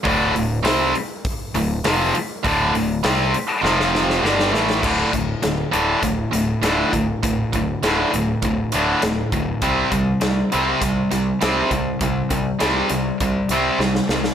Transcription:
<<
  \new Staff \with { instrumentName = "Distorted electric guitar" } { \clef bass \time 4/4 \key d \minor \tempo 4 = 100 <d, a, d>8 <d, a,>8 <c g c'>8 r4 <d, a,>8 <f, c f>8 r8 | <d, a, d>8 <d, a,>8 <c g c'>8 r8 <f, c f>4 <g, d g>8 <a, e a>8 | <d, a, d>8 <d, a,>8 <d, a,>8 <d, a, d>8 <d, a,>8 <d, a,>8 <d, a, d>8 <d, a,>8 | <d, a,>8 <d, a,>8 <d, a, d>8 <d, a,>8 <d, a,>8 <d, a, d>8 <d, a,>8 <d, a,>8 |
<c g c'>8 <c g>8 <c g>8 <c g c'>8 <c g>8 <c g>8 <c g c'>8 <c g>8 | <c g>8 <c g>8 <c g c'>8 <c g>8 <c g>8 <c g c'>8 <c g>8 <c g>8 | }
  \new Staff \with { instrumentName = "Distorted electric guitar" } { \clef bass \time 4/4 \key d \minor <d, a, d>8 <d, a,>8 <c g c'>8 r4 <d, a,>8 <f, c f>8 r8 | <d, a, d>8 <d, a,>8 <c g c'>8 r8 <f, c f>4 <g, d g>8 <a, e a>8 | <d, a, d>8 <d, a,>8 <d, a,>8 <d, a, d>8 <d, a,>8 <d, a,>8 <d, a, d>8 <d, a,>8 | <d, a,>8 <d, a,>8 <d, a, d>8 <d, a,>8 <d, a,>8 <d, a, d>8 <d, a,>8 <d, a,>8 |
<c g c'>8 <c g>8 <c g>8 <c g c'>8 <c g>8 <c g>8 <c g c'>8 <c g>8 | <c g>8 <c g>8 <c g c'>8 <c g>8 <c g>8 <c g c'>8 <c g>8 <c g>8 | }
  \new Staff \with { instrumentName = "Picked electric bass" } { \clef bass \time 4/4 \key d \minor d,,8 d,,8 c,8 r4 d,,8 f,,8 r8 | d,,8 d,,8 c,8 r8 f,,4 g,,8 a,,8 | d,,8 d,,8 d,,8 d,,8 d,,8 d,,8 d,,8 d,,8 | d,,8 d,,8 d,,8 d,,8 d,,8 d,,8 d,,8 d,,8 |
c,8 c,8 c,8 c,8 c,8 c,8 c,8 c,8 | c,8 c,8 c,8 c,8 c,8 c,8 c,8 c,8 | }
  \new DrumStaff \with { instrumentName = "Drums" } \drummode { \time 4/4 <hho bd>8 hho8 <hho sn>8 hho8 <hho bd>8 hho8 <hho sn>8 hho8 | <hho bd>8 hho8 <hho sn>8 hho8 sn16 sn16 sn16 sn16 sn16 sn16 sn16 sn16 | <cymc bd>8 <hh bd>8 <hh sn>8 hh8 <hh bd>8 hh8 <hh sn>8 <hh bd>8 | <hh bd>8 <hh bd>8 <hh sn>8 hh8 <hh bd>8 hh8 <hh sn>8 <hh bd>8 |
<hh bd>8 <hh bd>8 <hh sn>8 hh8 <hh bd>8 hh8 <hh sn>8 <hh bd>8 | <hh bd>8 <hh bd>8 <hh sn>8 hh8 <hh bd>8 hh8 sn16 sn16 sn16 sn16 | }
>>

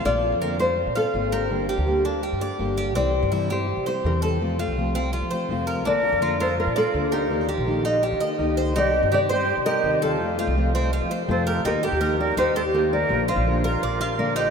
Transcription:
<<
  \new Staff \with { instrumentName = "Nylon-string guitar" } { \time 4/4 \key bes \major \tempo 4 = 166 d''4. c''4 a'4 g'8~ | g'4 r2. | d''4. c''4 c''8 bes'8 a'8~ | a'4 r2. |
d''4. c''8 bes'8 a'4 g'8~ | g'4 r2. | d''4 d''8 c''4 bes'4 a'8~ | a'4 r2 c''8 bes'8 |
bes'8 bes'4 d''8 c''8 c''8 bes'8 d''8~ | d''8 c''4 bes'4. d''8 c''8 | }
  \new Staff \with { instrumentName = "Cuban tres" } { \time 4/4 \key bes \major f'4 bes'8 c''4 f''4 bes'8~ | bes'8 g'4 d'8 g'8 d''4 g'8 | c'4 e'8 g'4 c''4 a'8~ | a'8 f'4 c'8 f'8 c''4 bes'8 |
d'4 f'8 bes'4 d''4 bes'8~ | bes'8 g'4 ees'8 g'8 ees''4 c''8 | ees'4 g'8 c''4 ees''4 a'8~ | a'8 f'4 c'8 f'8 c''4 bes'8 |
ees'8 g'8 bes'4 ees'8 g'4 r8 | r8 f'4 bes'8 d''8 f'4 ees'8 | }
  \new Staff \with { instrumentName = "Flute" } { \time 4/4 \key bes \major r1 | r1 | r1 | r1 |
bes'4. a'8 f'8 f'4 ees'8~ | ees'4 r2. | g'4 g'8 g'4 g'4 f'8~ | f'4 r2 a'8 g'8 |
g'8 g'4 bes'8 g'8 a'8 g'8 bes'8~ | bes'8 f'4 f'4. bes'8 g'8 | }
  \new Staff \with { instrumentName = "Steel-string acoustic guitar" } { \time 4/4 \key bes \major <d bes c' f'>8 <bes c' f'>8 <d bes c' f'>8 <bes c' f'>8 r8 <bes c' f'>8 <d bes c' f'>4 | <d g bes d' g'>8 <bes d' g'>8 <d g bes d' g'>8 <bes d' g'>8 r8 <bes d' g'>8 <d g bes d' g'>4 | <c e g c' e'>8 <g c' e'>8 <c e g c' e'>8 <g c' e'>8 r8 <g c' e'>8 <c e g c' e'>4 | <c f a c' f'>8 <a c' f'>8 <c f a c' f'>8 <a c' f'>8 r8 <a c' f'>8 <c f a c' f'>4 |
<d bes d' f'>8 <bes d' f'>8 <d bes d' f'>8 <bes d' f'>8 r8 <bes d' f'>8 <d bes d' f'>4 | <ees bes ees' g'>8 <bes ees' g'>8 <ees bes ees' g'>8 <bes ees' g'>8 r8 <bes ees' g'>8 <ees bes ees' g'>4 | <c ees g c' g'>8 <g c'>8 <c ees g c' g'>8 <g c' g'>8 r8 <g c' g'>8 <c ees g c' g'>4 | <c f a c' f'>8 <a c' f'>8 <c f a c' f'>8 <a c' f'>8 r8 <a c' f'>8 <c f a c' f'>4 |
<ees bes ees' g'>8 <bes ees' g'>8 <ees bes ees' g'>8 <bes ees' g'>8 r8 <bes ees' g'>8 <ees bes ees' g'>4 | <d bes d' f'>8 <bes d' f'>8 <d bes d' f'>8 <bes d' f'>8 r8 <bes d' f'>8 <d bes d' f'>4 | }
  \new Staff \with { instrumentName = "Upright bass" } { \clef bass \time 4/4 \key bes \major bes,,8. f,4. bes,8 r16 aes,,4 | g,,8. d,4. g,8 r16 g,,4 | c,8. g,4. c8 r16 e,4 | f,8. c,4. f8 r16 f,4 |
bes,,8. f,4. bes,8 r16 d,4 | ees,8. bes,,4. ees8 r16 des,4 | c,8. g,4. c8 r16 ees,4 | f,8. c,4. f8 r16 f,4 |
ees,8. ees,4~ ees,16 ees,2 | bes,,8. bes,,4~ bes,,16 bes,,2 | }
>>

